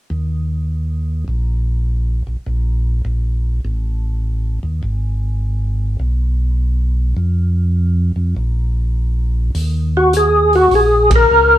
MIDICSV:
0, 0, Header, 1, 4, 480
1, 0, Start_track
1, 0, Key_signature, -6, "minor"
1, 0, Tempo, 589971
1, 83, Time_signature, 4, 2, 24, 8
1, 9424, End_track
2, 0, Start_track
2, 0, Title_t, "Tonewheel organ"
2, 0, Program_c, 0, 16
2, 8111, Note_on_c, 0, 66, 71
2, 8249, Note_off_c, 0, 66, 0
2, 8272, Note_on_c, 0, 68, 76
2, 8586, Note_off_c, 0, 68, 0
2, 8589, Note_on_c, 0, 66, 70
2, 8742, Note_off_c, 0, 66, 0
2, 8749, Note_on_c, 0, 68, 73
2, 9033, Note_off_c, 0, 68, 0
2, 9076, Note_on_c, 0, 70, 109
2, 9424, Note_off_c, 0, 70, 0
2, 9424, End_track
3, 0, Start_track
3, 0, Title_t, "Tonewheel organ"
3, 0, Program_c, 1, 16
3, 83, Note_on_c, 1, 39, 70
3, 1013, Note_off_c, 1, 39, 0
3, 1040, Note_on_c, 1, 34, 70
3, 1811, Note_off_c, 1, 34, 0
3, 1846, Note_on_c, 1, 34, 34
3, 1927, Note_off_c, 1, 34, 0
3, 2006, Note_on_c, 1, 34, 78
3, 2455, Note_off_c, 1, 34, 0
3, 2481, Note_on_c, 1, 34, 65
3, 2933, Note_off_c, 1, 34, 0
3, 2967, Note_on_c, 1, 33, 73
3, 3735, Note_off_c, 1, 33, 0
3, 3767, Note_on_c, 1, 39, 61
3, 3918, Note_off_c, 1, 39, 0
3, 3927, Note_on_c, 1, 32, 75
3, 4857, Note_off_c, 1, 32, 0
3, 4878, Note_on_c, 1, 35, 74
3, 5812, Note_off_c, 1, 35, 0
3, 5830, Note_on_c, 1, 41, 79
3, 6606, Note_off_c, 1, 41, 0
3, 6638, Note_on_c, 1, 41, 59
3, 6793, Note_off_c, 1, 41, 0
3, 6806, Note_on_c, 1, 34, 69
3, 7733, Note_off_c, 1, 34, 0
3, 7768, Note_on_c, 1, 39, 81
3, 8693, Note_off_c, 1, 39, 0
3, 8715, Note_on_c, 1, 34, 74
3, 9165, Note_off_c, 1, 34, 0
3, 9204, Note_on_c, 1, 37, 70
3, 9424, Note_off_c, 1, 37, 0
3, 9424, End_track
4, 0, Start_track
4, 0, Title_t, "Drums"
4, 7767, Note_on_c, 9, 46, 46
4, 7848, Note_off_c, 9, 46, 0
4, 8242, Note_on_c, 9, 42, 56
4, 8324, Note_off_c, 9, 42, 0
4, 8566, Note_on_c, 9, 46, 35
4, 8647, Note_off_c, 9, 46, 0
4, 8715, Note_on_c, 9, 46, 41
4, 8796, Note_off_c, 9, 46, 0
4, 9036, Note_on_c, 9, 51, 73
4, 9039, Note_on_c, 9, 36, 79
4, 9117, Note_off_c, 9, 51, 0
4, 9120, Note_off_c, 9, 36, 0
4, 9424, End_track
0, 0, End_of_file